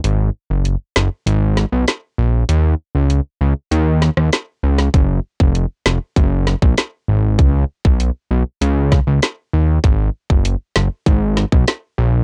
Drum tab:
HH |x---x---x---x---|x---x---x---x---|x---x---x---x---|x---x---x---x---|
SD |------o---o-o---|----------oro--o|------o---o-o---|----------o-o---|
BD |----------------|----------------|o--o----o--o----|o--o------o-----|

HH |x---x---x---x---|
SD |------o---o-o---|
BD |o--o----o--o----|